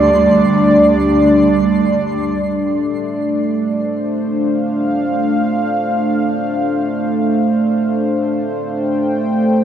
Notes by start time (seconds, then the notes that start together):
Already playing: D2 G3 D4 D5 C6
2.43 A3
3.77 C5
4.31 F5
8.70 G5